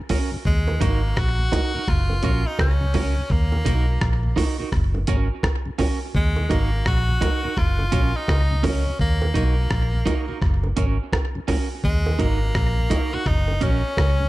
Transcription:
0.09 tonewheel organ F#3 A#3 C#4, clean electric guitar C#4 F#4 A#4, kick, open hi-hat, high bongo, low bongo
0.32 tonewheel organ F#2 C#3
0.45 fingered electric bass D#2, tenor saxophone G#3, kick
0.67 tonewheel organ D#2 A#2, high bongo
0.80 fingered electric bass G#1, tonewheel organ F#3 A#3 D#4, tenor saxophone A#3, clean electric guitar D#4 F#4 A#4, kick, closed hi-hat, high bongo
1.17 fingered electric bass A#1, tenor saxophone F#4, kick, cross-stick
1.38 tonewheel organ D#2 A#2
1.52 tonewheel organ F#3 A#3 D#4, clean electric guitar D#4 F#4 A#4, kick, closed hi-hat, high bongo, low bongo
1.74 tonewheel organ D#2 A#2, clean electric guitar D#4 F#4 A#4
1.88 fingered electric bass F#1, tenor saxophone F4, kick, cross-stick
2.09 tonewheel organ F#2 C#3, high bongo
2.22 fingered electric bass A#1, tonewheel organ F#3 A#3 C#4, clean electric guitar C#4 F#4 A#4, kick, closed hi-hat
2.47 tenor saxophone D#4
2.59 fingered electric bass C#2, tenor saxophone C#4, kick, cross-stick, high bongo
2.81 tonewheel organ F#2 C#3
2.94 tonewheel organ F#3 A#3 C#4, clean electric guitar C#4 F#4 A#4, kick, open hi-hat, high bongo, low bongo
3.17 tonewheel organ F#2 C#3
3.30 fingered electric bass D#2, tenor saxophone A#3, kick
3.52 tonewheel organ D#2 A#2, high bongo
3.64 fingered electric bass B1, tonewheel organ F#3 A#3 D#4, clean electric guitar D#4 F#4 A#4, kick, closed hi-hat, high bongo
4.01 fingered electric bass A#1, kick, cross-stick
4.23 tonewheel organ D#2 A#2
4.36 tonewheel organ F#3 A#3 D#4, clean electric guitar D#4 F#4 A#4, kick, open hi-hat, high bongo, low bongo
4.58 tonewheel organ D#2 A#2, clean electric guitar D#4 F#4 A#4
4.72 fingered electric bass F#1, kick, cross-stick
4.94 tonewheel organ F#2 C#3, high bongo
5.07 fingered electric bass G#1, tonewheel organ F#3 A#3 C#4, clean electric guitar C#4 F#4 A#4, kick, closed hi-hat
5.43 kick, cross-stick, high bongo
5.66 tonewheel organ F#2 C#3
5.78 tonewheel organ F#3 A#3 C#4, clean electric guitar C#4 F#4 A#4, kick, open hi-hat, high bongo, low bongo
6.15 fingered electric bass D#2, tenor saxophone G#3, kick
6.36 tonewheel organ D#2 A#2, high bongo
6.49 fingered electric bass G#1, tonewheel organ F#3 A#3 D#4, tenor saxophone A#3, clean electric guitar D#4 F#4 A#4, kick, closed hi-hat, high bongo
6.86 fingered electric bass A#1, tenor saxophone F#4, kick, cross-stick
7.08 tonewheel organ D#2 A#2
7.21 tonewheel organ F#3 A#3 D#4, clean electric guitar D#4 F#4 A#4, kick, closed hi-hat, high bongo, low bongo
7.43 tonewheel organ D#2 A#2, clean electric guitar D#4 F#4 A#4
7.57 fingered electric bass F#1, tenor saxophone F4, kick, cross-stick
7.79 tonewheel organ F#2 C#3, high bongo
7.92 fingered electric bass A#1, tonewheel organ F#3 A#3 C#4, clean electric guitar C#4 F#4 A#4, kick, closed hi-hat
8.16 tenor saxophone D#4
8.28 fingered electric bass C#2, kick, cross-stick, high bongo
8.51 tonewheel organ F#2 C#3
8.63 tonewheel organ F#3 A#3 C#4, clean electric guitar C#4 F#4 A#4, tenor saxophone C#4, kick, open hi-hat, high bongo, low bongo
8.86 tonewheel organ F#2 C#3
8.99 fingered electric bass D#2, tenor saxophone A#3, kick
9.22 tonewheel organ D#2 A#2, high bongo
9.34 fingered electric bass B1, tonewheel organ F#3 A#3 D#4, tenor saxophone A#3, clean electric guitar D#4 F#4 A#4, kick, closed hi-hat, high bongo
9.71 fingered electric bass A#1, kick, cross-stick
9.93 tonewheel organ D#2 A#2
10.06 tonewheel organ F#3 A#3 D#4, clean electric guitar D#4 F#4 A#4, kick, closed hi-hat, high bongo, low bongo
10.28 tonewheel organ D#2 A#2, clean electric guitar D#4 F#4 A#4
10.42 fingered electric bass F#1, kick, cross-stick
10.63 tonewheel organ F#2 C#3, high bongo
10.77 fingered electric bass G#1, tonewheel organ F#3 A#3 C#4, clean electric guitar C#4 F#4 A#4, kick, closed hi-hat
11.13 kick, cross-stick, high bongo
11.35 tonewheel organ F#2 C#3
11.48 tonewheel organ F#3 A#3 C#4, clean electric guitar C#4 F#4 A#4, kick, open hi-hat, high bongo, low bongo
11.84 fingered electric bass D#2, tenor saxophone G#3, kick
12.06 tonewheel organ D#2 A#2, high bongo
12.18 fingered electric bass G#1, tonewheel organ F#3 A#3 D#4, tenor saxophone A#3, clean electric guitar D#4 F#4 A#4, kick, closed hi-hat, high bongo
12.55 fingered electric bass A#1, kick, cross-stick
12.77 tonewheel organ D#2 A#2
12.90 tonewheel organ F#3 A#3 D#4, clean electric guitar D#4 F#4 A#4, kick, closed hi-hat, high bongo, low bongo
13.12 tonewheel organ D#2 A#2, clean electric guitar D#4 F#4 A#4, tenor saxophone F#4
13.26 fingered electric bass F#1, tenor saxophone D#4, kick, cross-stick
13.48 tonewheel organ F#2 C#3, high bongo
13.61 fingered electric bass A#1, tonewheel organ F#3 A#3 C#4, clean electric guitar C#4 F#4 A#4, tenor saxophone C#4, kick, closed hi-hat
13.97 fingered electric bass C#2, kick, cross-stick, high bongo
14.20 tonewheel organ F#2 C#3

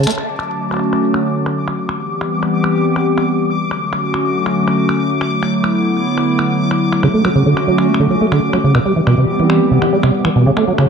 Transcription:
Already playing: synth texture A5
0.03 acid bass A3, finger snap, closed hi-hat
0.07 closed hi-hat
0.10 closed hi-hat
0.12 closed hi-hat
0.18 analog synth pad D3 F#3 A3 C#4 F#4, synth texture D6, finger snap, crash
0.26 closed hi-hat
0.39 finger snap
0.71 finger snap
0.74 finger snap
0.77 finger snap
0.79 finger snap
0.93 finger snap
1.14 finger snap
1.46 finger snap
1.68 finger snap
1.89 analog synth pad E3 G3 B3 C4 G4, finger snap
2.21 finger snap
2.43 finger snap
2.64 finger snap
2.96 finger snap
3.18 finger snap
3.60 analog synth pad D3 F#3 A3 C#4 F#4
3.71 finger snap
3.93 finger snap
4.14 finger snap
4.46 finger snap
4.68 finger snap
4.89 finger snap
5.21 finger snap
5.32 analog synth pad D3 B3 E4
5.43 finger snap
5.64 finger snap
6.18 finger snap
6.39 finger snap
6.71 finger snap
6.92 finger snap
7.03 acid bass C#3, analog synth pad A3 C#4 F#4, finger snap
7.14 acid bass A3
7.25 acid bass F#3, finger snap
7.35 acid bass C#3
7.46 acid bass D3
7.57 finger snap
7.67 acid bass F#3
7.78 finger snap
7.89 acid bass C#4
7.94 finger snap
8.00 acid bass D3
8.10 acid bass F#3
8.21 acid bass A3
8.32 acid bass D3, finger snap
8.53 acid bass F#3, finger snap
8.64 acid bass C#3
8.75 acid bass B2, analog synth pad E3 G3 B3 C4 G4, finger snap
8.85 acid bass G3
8.96 acid bass E3
9.07 acid bass B2, finger snap
9.18 acid bass C3
9.39 acid bass E3
9.50 finger snap
9.60 acid bass B3
9.71 acid bass C3
9.82 acid bass E3, finger snap
9.93 acid bass G3
10.03 acid bass C3, finger snap
10.25 acid bass E3, finger snap
10.35 acid bass B2
10.46 acid bass C#3, analog synth pad D3 F#3 A3 C#4 F#4
10.57 acid bass A3, finger snap
10.68 acid bass F#3
10.78 acid bass C#3, finger snap

